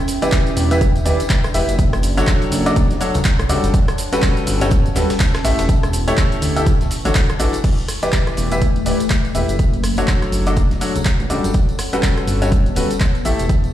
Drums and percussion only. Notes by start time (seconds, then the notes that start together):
0.08 snare, closed hi-hat, open hi-hat, cabasa
0.22 closed hi-hat, tambourine, cabasa
0.32 kick, snare, clap, closed hi-hat, open hi-hat, tambourine, cabasa
0.47 closed hi-hat, tambourine, cabasa
0.57 closed hi-hat, open hi-hat, cabasa
0.71 closed hi-hat, tambourine, cabasa
0.81 kick, closed hi-hat, cabasa
0.96 closed hi-hat, tambourine, cabasa
1.06 closed hi-hat, open hi-hat, cabasa
1.20 closed hi-hat, tambourine, cabasa
1.30 kick, snare, clap, closed hi-hat, cabasa
1.44 cross-stick, closed hi-hat, tambourine, cabasa
1.54 closed hi-hat, open hi-hat, cabasa
1.69 closed hi-hat, tambourine, cabasa
1.79 kick, closed hi-hat, tambourine, cabasa
1.93 cross-stick, closed hi-hat, tambourine, cabasa
2.03 closed hi-hat, open hi-hat, cabasa
2.17 closed hi-hat, tambourine, cabasa
2.27 kick, snare, clap, closed hi-hat, tambourine, cabasa
2.42 closed hi-hat, tambourine, cabasa
2.52 closed hi-hat, open hi-hat, cabasa
2.66 closed hi-hat, tambourine, cabasa
2.76 kick, closed hi-hat, tambourine, cabasa
2.90 snare, closed hi-hat, tambourine, cabasa
3.01 snare, closed hi-hat, open hi-hat, cabasa
3.14 closed hi-hat, tambourine, cabasa
3.24 kick, snare, clap, closed hi-hat, tambourine, cabasa
3.39 cross-stick, closed hi-hat, tambourine, cabasa
3.49 closed hi-hat, open hi-hat, cabasa
3.64 closed hi-hat, tambourine, cabasa
3.74 kick, closed hi-hat, tambourine, cabasa
3.88 cross-stick, closed hi-hat, tambourine, cabasa
3.98 snare, closed hi-hat, open hi-hat, cabasa
4.13 closed hi-hat, tambourine, cabasa
4.22 kick, snare, clap, closed hi-hat, open hi-hat, tambourine, cabasa
4.36 closed hi-hat, tambourine, cabasa
4.47 closed hi-hat, open hi-hat, cabasa
4.61 closed hi-hat, tambourine, cabasa
4.71 kick, closed hi-hat, tambourine, cabasa
4.86 closed hi-hat, tambourine, cabasa
4.96 snare, open hi-hat, cabasa
5.10 snare, closed hi-hat, open hi-hat, tambourine, cabasa
5.20 kick, snare, clap, closed hi-hat, open hi-hat, tambourine, cabasa
5.34 cross-stick, snare, closed hi-hat, open hi-hat, tambourine, cabasa
5.45 snare, open hi-hat, cabasa
5.58 snare, closed hi-hat, open hi-hat, tambourine, cabasa
5.69 kick, closed hi-hat, tambourine, cabasa
5.83 cross-stick, closed hi-hat, tambourine, cabasa
5.93 closed hi-hat, open hi-hat, cabasa
6.08 closed hi-hat, tambourine, cabasa
6.17 kick, snare, clap, closed hi-hat, tambourine, cabasa
6.32 closed hi-hat, tambourine, cabasa
6.42 closed hi-hat, open hi-hat, cabasa
6.57 closed hi-hat, tambourine, cabasa
6.66 kick, closed hi-hat, tambourine, cabasa
6.81 snare, closed hi-hat, tambourine, cabasa
6.91 snare, closed hi-hat, open hi-hat, cabasa
7.05 closed hi-hat, tambourine, cabasa
7.15 kick, snare, clap, closed hi-hat, open hi-hat, tambourine, cabasa
7.30 cross-stick, closed hi-hat, tambourine, cabasa
7.40 closed hi-hat, open hi-hat, cabasa
7.53 closed hi-hat, tambourine, cabasa
7.64 kick, closed hi-hat, crash, tambourine, cabasa
7.78 closed hi-hat, tambourine
7.88 cross-stick, snare, closed hi-hat, open hi-hat, cabasa
8.02 closed hi-hat, tambourine, cabasa
8.12 kick, snare, clap, closed hi-hat, open hi-hat, tambourine, cabasa
8.27 cross-stick, closed hi-hat, tambourine
8.37 closed hi-hat, open hi-hat, cabasa
8.51 closed hi-hat, tambourine, cabasa
8.62 kick, closed hi-hat, cabasa
8.76 closed hi-hat, tambourine
8.86 closed hi-hat, open hi-hat, cabasa
9.00 closed hi-hat, tambourine, cabasa
9.10 kick, snare, clap, closed hi-hat, tambourine, cabasa
9.25 closed hi-hat, tambourine
9.35 closed hi-hat, open hi-hat, cabasa
9.49 closed hi-hat, tambourine, cabasa
9.59 kick, closed hi-hat, tambourine, cabasa
9.73 closed hi-hat, tambourine
9.84 cross-stick, closed hi-hat, open hi-hat, cabasa
9.97 closed hi-hat, tambourine, cabasa
10.08 kick, snare, clap, closed hi-hat, tambourine, cabasa
10.22 cross-stick, closed hi-hat, tambourine
10.32 closed hi-hat, open hi-hat, cabasa
10.46 closed hi-hat, tambourine, cabasa
10.56 kick, closed hi-hat, tambourine, cabasa
10.71 snare, closed hi-hat, tambourine
10.81 snare, closed hi-hat, open hi-hat, cabasa
10.96 closed hi-hat, tambourine, cabasa
11.05 kick, snare, clap, closed hi-hat, cabasa
11.20 closed hi-hat, tambourine
11.30 closed hi-hat, open hi-hat, cabasa
11.44 closed hi-hat, tambourine, cabasa
11.53 kick, closed hi-hat, tambourine, cabasa
11.69 closed hi-hat, tambourine
11.79 cross-stick, snare, closed hi-hat, open hi-hat, cabasa
11.93 closed hi-hat, tambourine, cabasa
12.03 kick, snare, clap, closed hi-hat, open hi-hat, tambourine, cabasa
12.17 cross-stick, closed hi-hat, tambourine
12.27 closed hi-hat, open hi-hat, cabasa
12.42 closed hi-hat, tambourine, cabasa
12.52 kick, closed hi-hat, tambourine, cabasa
12.66 closed hi-hat, tambourine
12.76 closed hi-hat, open hi-hat, cabasa
12.90 closed hi-hat, tambourine, cabasa
13.00 kick, snare, clap, closed hi-hat, cabasa
13.15 closed hi-hat, tambourine
13.25 closed hi-hat, open hi-hat, cabasa
13.39 closed hi-hat, tambourine, cabasa
13.49 kick, closed hi-hat, tambourine, cabasa
13.64 closed hi-hat, tambourine